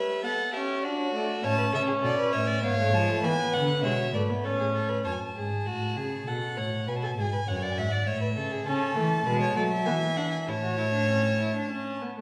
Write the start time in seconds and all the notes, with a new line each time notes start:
Already playing: G3 B4 E5
0.23 B3 A4 F#5
0.53 C#4 G4 E5
0.83 D4 F#4 D5
0.99 C#5
1.14 A3 D5
1.30 E5
1.43 A2 C#4 C#5 A5
1.58 B4
1.72 C#3 A4 E5
1.87 G#4
2.02 B2 A4 D5
2.17 B4
2.32 A2 C#5 E5
2.47 D5
2.63 G#2 B3 C#5 F5
2.79 A3
2.93 F3 G#3 A5
3.09 A3
3.23 E3 B3 B4 G#5
3.53 D3 F#5
3.83 B2 G#3 C#5 E5
4.13 G#2 A3 B4 D5
4.30 B3
4.44 A2 C#4 A4 C#5
4.59 G#4
4.75 A4
4.89 B4
5.04 F#2 C#5 A5
5.12 G#5
5.20 A5
5.35 G#2 G#4
5.66 A2 F#4
5.96 C#3 G#4
6.27 B2 A4 F#5
6.57 A2 C#5
6.87 B2 B4 G#5
6.96 A5
7.02 A4 G#5
7.12 A5
7.17 G#2 G#4 G#5
7.32 B4
7.47 F#2 C#5 F#5
7.56 G#5
7.62 D5 F#5
7.72 G#5
7.77 G#2 E5 F#5
7.91 D5
8.06 A2 C#5 E5
8.21 B4
8.36 C#3 A4
8.51 G#4
8.66 C#3 C#4 A4 A5
8.96 E3 A3
9.26 B2 G#3 B4
9.41 C#5
9.56 F#3 A3 D5
9.71 E5
9.85 E3 B3 G#5
10.16 D4 F#5
10.31 G#5
10.47 A2 E4 C#5 A5
10.63 F#4
10.78 E4
10.93 D4
11.09 C#4
11.39 E4
11.55 D4
11.71 C#4
12.02 B3
12.18 A3